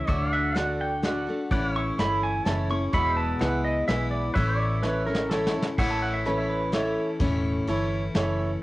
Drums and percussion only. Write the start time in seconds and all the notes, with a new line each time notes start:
0.08 kick, closed hi-hat
0.56 snare, closed hi-hat
1.03 snare, closed hi-hat
1.51 kick, closed hi-hat
1.99 snare, closed hi-hat
2.46 snare, closed hi-hat
2.93 kick, closed hi-hat
3.41 snare, closed hi-hat
3.89 snare, closed hi-hat
4.36 kick, closed hi-hat
4.83 snare
5.15 snare
5.31 snare
5.47 snare
5.62 snare
5.78 kick, crash
6.26 closed hi-hat
6.73 snare, closed hi-hat
7.20 kick, closed hi-hat
7.68 closed hi-hat
8.15 snare, closed hi-hat